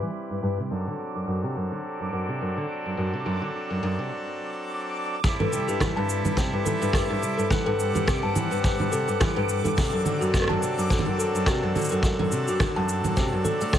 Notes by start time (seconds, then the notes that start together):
Already playing: G3 C4 E4 B4 D6
0.02 E3
0.30 G2
0.43 G2
0.58 C3
0.71 F#2 F#3 D4 A4
0.87 D3
1.15 F#2
1.27 F#2
1.43 C3
1.56 F#2
1.72 D3
2.00 F#2
2.13 F#2
2.29 C3
2.41 F#2
2.57 D3
2.86 F#2
2.97 F#2
3.13 C3
3.26 F#2
3.42 D3
3.70 F#2
3.83 F#2
3.99 C3
5.24 G3 C4 E4 A4 D6, kick, shaker
5.40 G2 A4, low conga
5.52 C3, shaker
5.68 G2 G4, shaker
5.80 E3, kick, cross-stick, low conga, shaker
5.96 G2 A5
6.09 shaker
6.25 G2, low conga, shaker
6.37 C3 C5, kick, shaker
6.53 G2
6.65 E3 A4, low conga, shaker
6.82 G2, shaker
6.93 G4, kick, cross-stick, shaker
7.10 G2, cross-stick
7.22 C3, shaker
7.37 G2 A4, shaker
7.50 E3 F#5, kick, low conga, shaker
7.66 G2 A4
7.80 shaker
7.95 G2 G4, low conga, shaker
8.07 C3, kick, cross-stick, shaker
8.23 G2 A5
8.35 E3, low conga, shaker
8.51 G2, shaker
8.64 C5, kick, shaker
8.79 G2, low conga
8.92 C3 A4, shaker
9.08 G2, shaker
9.20 E3 G4, kick, cross-stick, low conga, shaker
9.36 G2
9.49 shaker
9.64 G2 A4, low conga, shaker
9.76 C3 F#3 C4 D4, kick, shaker
9.93 F#2 A4
10.05 D3, low conga, shaker
10.21 F#2 F#4, shaker
10.34 kick, cross-stick, shaker
10.37 cross-stick
10.40 cross-stick
10.42 cross-stick
10.44 cross-stick
10.48 F#2 A5, cross-stick, low conga
10.62 C3, shaker
10.78 F#2, shaker
10.90 D3 C5, kick, shaker
10.99 low conga
11.06 F#2
11.18 A4, shaker
11.35 F#2, shaker
11.46 C3 F#4, kick, cross-stick, shaker
11.63 F#2, cross-stick
11.76 D3, low conga, shaker
11.79 shaker
11.81 shaker
11.84 shaker
11.89 A4, shaker
11.92 F#2, shaker
12.03 kick, shaker
12.19 F#2 A4, low conga
12.32 C3, shaker
12.48 F#2 F#4, shaker
12.60 D3, kick, cross-stick, low conga, shaker
12.76 F#2 A5
12.89 shaker
13.04 F#2, low conga, shaker
13.17 C3 C5, kick, shaker
13.33 F#2, cross-stick
13.45 A4, low conga, shaker
13.61 A3 D5, shaker
13.73 A2 C5, kick, cross-stick, shaker